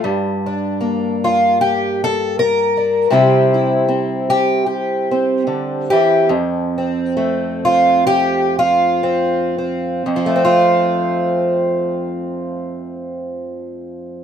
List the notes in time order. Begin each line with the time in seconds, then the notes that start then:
0.04 G2
0.46 D4
0.81 A#3
1.24 F4
1.61 G4
2.04 A4
2.39 A#4
2.77 D4
3.10 C3 G3 C4 E4 G4
3.54 E4
3.88 C4
4.30 G4
4.66 G4
5.11 C4
5.47 D3
5.90 E3 G4
6.29 F2
6.78 C4
7.17 A3
7.65 F4
8.07 G4
8.59 F4
9.03 C4
9.58 C4
10.06 F2
10.16 F3
10.26 A3
10.36 C4
10.45 F4